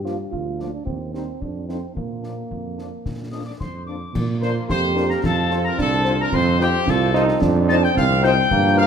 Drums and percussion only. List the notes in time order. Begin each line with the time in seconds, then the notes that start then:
0.06 snare
0.33 concert bass drum
0.60 snare
0.87 concert bass drum
1.15 snare
1.42 concert bass drum
1.69 snare
1.97 concert bass drum
2.24 snare
2.51 concert bass drum
2.79 snare
3.06 concert bass drum, snare
3.61 concert bass drum, snare
4.15 concert bass drum, crash
4.43 snare
4.70 concert bass drum, snare
4.97 snare
5.11 snare
5.24 concert bass drum, snare
5.51 snare
5.79 concert bass drum, snare
5.92 snare
6.05 snare
6.33 concert bass drum, crash
6.61 snare
6.88 concert bass drum, snare
7.15 snare
7.28 snare
7.42 concert bass drum, snare
7.70 snare
7.97 concert bass drum, snare
8.11 snare
8.24 snare
8.51 concert bass drum, crash
8.78 snare